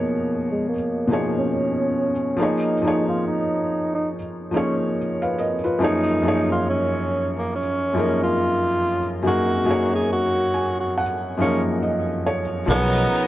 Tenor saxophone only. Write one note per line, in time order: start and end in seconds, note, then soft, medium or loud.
0.00 0.47 A#3 medium
0.52 0.67 G#3 medium
0.69 1.32 A#3 medium
1.38 2.36 C#4 medium
2.41 3.10 D#4 medium
3.09 3.24 F4 medium
3.27 3.90 D#4 medium
3.95 4.10 D#4 medium
4.56 4.77 C#4 medium
5.83 6.53 D#4 loud
6.52 6.67 F4 medium
6.70 7.33 C#4 medium
7.38 7.53 A#3 medium
7.55 8.18 C#4 medium
8.23 9.22 F4 medium
9.27 9.90 F#4 medium
9.95 10.10 G#4 medium
10.12 10.75 F#4 medium
10.80 10.96 F#4 medium
11.41 11.63 C#4 medium
12.70 13.27 B3 loud